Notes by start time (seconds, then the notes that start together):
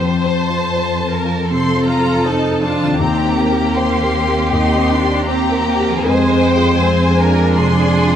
Already playing: F2 F3 C4 F4 C5 A5
0.00 F3 C4
0.25 C4
0.50 F4
0.76 C5
1.00 A4
1.10 A#4
1.25 F4
1.48 C3 C4 A4 C6
1.76 C4
1.87 F4 A#5
2.01 F4
2.25 D#4 C5 A5
2.51 A4
2.63 D4 F4 A5
2.76 F4
2.83 D#3
2.87 C4
2.92 D#4
2.96 D#2 G4 A#4
3.01 D#2 A#3 C4 A#5
3.25 C4
3.38 A#3
3.51 G4
3.77 C5 C6
4.03 A#4
4.28 G4
4.52 D#2 D#4 C6
4.78 C4
4.91 D4
5.03 G4
5.28 C4 G4 C5 A#5
5.52 A#4
5.67 A#3
5.80 G4
5.88 F3
5.93 C4
5.97 F4
6.02 G#4
6.06 F2 G#3 C4 C5 G#5
6.32 C4
6.45 G5
6.57 F4
6.80 C4 C5 G#5
7.07 G#4
7.19 D4 A#4
7.30 F4
7.56 C3 G#4 C6
7.83 C4
8.08 F4